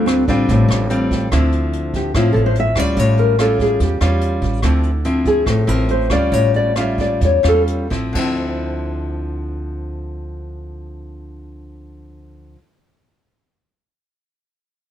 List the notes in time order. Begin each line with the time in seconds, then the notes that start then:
Already playing: D2 D3 G3 C4 F4
0.06 C4, cross-stick, closed hi-hat
0.28 A1 G3 C4 D4 F4, kick, closed hi-hat
0.49 A1 A2, kick, closed hi-hat
0.68 A1, cross-stick, closed hi-hat
0.90 G3 C4 F4, closed hi-hat
1.11 kick, closed hi-hat
1.32 D2 D3 F3 C4 E4, kick, cross-stick, closed hi-hat
1.52 closed hi-hat
1.73 closed hi-hat
1.94 G4, kick, closed hi-hat
2.14 A1 A2 F3 C4 E4 F4, kick, cross-stick, closed hi-hat
2.33 A1 A4, closed hi-hat
2.46 C5
2.55 closed hi-hat
2.60 E5
2.75 D2 G3 C#4 F4 D5, kick, cross-stick, closed hi-hat
2.96 A1 A2 C#5, kick, closed hi-hat
3.17 A#4, closed hi-hat
3.39 G3 C#4 F4 A4, cross-stick, closed hi-hat
3.59 G#4, kick, closed hi-hat
3.80 E2 G4, kick, closed hi-hat
4.01 E2 G3 C#4 F4, cross-stick, closed hi-hat
4.21 closed hi-hat
4.41 A1, kick, closed hi-hat
4.62 D2 D3 F3 C4 E4, kick, cross-stick, closed hi-hat
4.83 closed hi-hat
5.04 F3 C4 E4, closed hi-hat
5.25 G#4, kick, closed hi-hat
5.46 A1 A2 A4, kick, cross-stick, closed hi-hat
5.67 A1 F3 C4 E4 A#4, closed hi-hat
5.88 C5, closed hi-hat
6.10 D2 G3 C#4 F4 D5, kick, cross-stick, closed hi-hat
6.32 A1 A2 C#5, kick, closed hi-hat
6.54 D5, closed hi-hat
6.76 G3 C#4 F4 E5, cross-stick, closed hi-hat
6.98 D5, kick, closed hi-hat
7.21 E2 C#5, kick, closed hi-hat
7.43 E2 G3 C#4 F4, cross-stick, closed hi-hat
7.48 A4
7.67 closed hi-hat
7.90 A1 F3 C4 E4, kick, closed hi-hat
8.13 D2 D3 F3, kick, crash
8.17 C4 E4